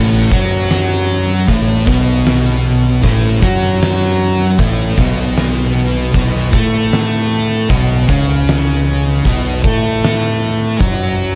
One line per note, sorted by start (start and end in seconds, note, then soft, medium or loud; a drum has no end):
0.00 0.29 A1 loud
0.00 0.30 A2 medium
0.00 0.31 A3 loud
0.32 1.44 F#2 medium
0.32 1.47 F#3 loud
0.32 1.47 F#4 loud
0.32 kick loud
0.70 snare loud
0.70 open hi-hat medium
1.48 1.84 A1 medium
1.48 1.86 A2 loud
1.48 1.86 A3 loud
1.48 kick medium
1.48 open hi-hat medium
1.87 3.00 B1 loud
1.87 3.03 B2 medium
1.87 3.03 B3 medium
1.87 kick loud
2.26 snare loud
2.26 open hi-hat medium
3.03 3.40 A1 loud
3.03 3.41 A2 loud
3.03 3.41 A3 medium
3.03 kick loud
3.03 open hi-hat medium
3.42 4.55 F#2 medium
3.42 4.58 F#3 medium
3.42 4.58 F#4 loud
3.42 kick loud
3.63 snare soft
3.82 snare loud
3.82 open hi-hat medium
4.59 4.95 A1 loud
4.59 4.97 A2 loud
4.59 4.97 A3 loud
4.59 kick loud
4.59 open hi-hat medium
4.98 6.10 B1 loud
4.98 6.13 B2 medium
4.98 6.14 B3 medium
4.98 kick loud
5.36 snare loud
5.36 open hi-hat medium
6.14 6.51 B1 loud
6.14 6.52 B2 loud
6.14 6.53 B3 loud
6.14 kick loud
6.14 open hi-hat medium
6.36 snare soft
6.53 7.66 A2 loud
6.53 7.69 A3 loud
6.53 7.69 A4 loud
6.53 kick loud
6.92 snare loud
6.92 open hi-hat medium
7.69 8.06 B1 loud
7.69 8.07 B2 medium
7.69 8.08 B3 loud
7.69 kick loud
7.69 open hi-hat medium
8.08 9.21 C#2 medium
8.08 9.24 C#3 medium
8.08 9.24 C#4 medium
8.08 kick loud
8.48 snare loud
8.48 open hi-hat medium
9.25 9.61 B1 loud
9.25 9.63 B2 medium
9.25 9.63 B3 loud
9.25 kick loud
9.25 open hi-hat medium
9.63 10.76 A2 medium
9.63 10.79 A3 medium
9.63 10.79 A4 loud
9.63 kick loud
10.03 snare loud
10.03 open hi-hat medium
10.80 11.35 F#2 loud
10.80 11.35 F#3 loud
10.80 11.35 F#4 loud
10.80 kick loud
10.80 open hi-hat medium